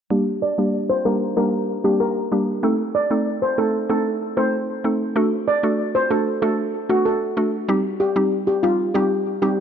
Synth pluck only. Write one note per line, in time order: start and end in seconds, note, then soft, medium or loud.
0.10 0.24 G3 medium
0.10 0.24 A#3 medium
0.10 0.24 D4 medium
0.10 0.24 G4 loud
0.58 1.02 G3 medium
0.58 1.02 A#3 medium
0.58 1.02 D4 medium
0.58 1.02 G4 medium
1.05 1.34 G3 medium
1.05 1.35 A#3 medium
1.05 1.35 D4 medium
1.05 1.35 G4 medium
1.37 1.80 G3 medium
1.37 1.80 A#3 medium
1.37 1.81 D4 medium
1.37 1.81 G4 loud
1.84 2.28 G3 medium
1.84 2.28 A#3 medium
1.84 2.28 D4 medium
1.84 2.28 G4 medium
2.32 2.61 G3 medium
2.32 2.61 A#3 medium
2.32 2.61 D4 medium
2.32 2.61 G4 medium
2.63 2.76 A3 medium
2.63 2.76 C4 medium
2.63 2.76 D#4 medium
2.63 2.76 A4 loud
3.10 3.54 A3 medium
3.10 3.54 C4 medium
3.10 3.54 D#4 medium
3.10 3.54 A4 medium
3.58 3.87 A3 medium
3.58 3.87 C4 medium
3.58 3.87 D#4 medium
3.58 3.87 A4 medium
3.89 4.33 A3 medium
3.89 4.33 C4 medium
3.89 4.33 D#4 medium
3.89 4.33 A4 loud
4.37 4.81 A3 medium
4.37 4.81 C4 medium
4.37 4.81 D#4 medium
4.37 4.81 A4 medium
4.84 5.13 A3 medium
4.84 5.13 C4 medium
4.84 5.14 D#4 medium
4.84 5.14 A4 medium
5.16 5.29 A3 medium
5.16 5.29 D4 medium
5.16 5.29 F#4 medium
5.16 5.29 A4 loud
5.63 6.07 A3 medium
5.63 6.07 D4 medium
5.63 6.07 F#4 medium
5.63 6.07 A4 medium
6.10 6.40 A3 medium
6.10 6.40 D4 medium
6.10 6.40 F#4 medium
6.10 6.40 A4 medium
6.42 6.86 A3 medium
6.42 6.86 D4 medium
6.42 6.86 F#4 medium
6.42 6.86 A4 loud
6.89 7.33 A3 medium
6.89 7.33 D4 medium
6.89 7.33 F#4 medium
6.89 7.33 A4 medium
7.37 7.66 A3 medium
7.37 7.66 D4 medium
7.37 7.66 F#4 medium
7.37 7.66 A4 medium
7.68 7.82 G3 medium
7.68 7.82 C4 medium
7.68 7.82 D#4 medium
7.68 7.82 G4 loud
8.16 8.59 G3 medium
8.16 8.60 C4 medium
8.16 8.60 D#4 medium
8.16 8.60 G4 medium
8.63 8.92 G3 medium
8.63 8.92 C4 medium
8.63 8.93 D#4 medium
8.63 8.93 G4 medium
8.95 9.38 G3 medium
8.95 9.39 C4 medium
8.95 9.39 D#4 medium
8.95 9.39 G4 loud
9.42 9.60 G3 medium
9.42 9.60 C4 medium
9.42 9.60 D#4 medium
9.42 9.60 G4 medium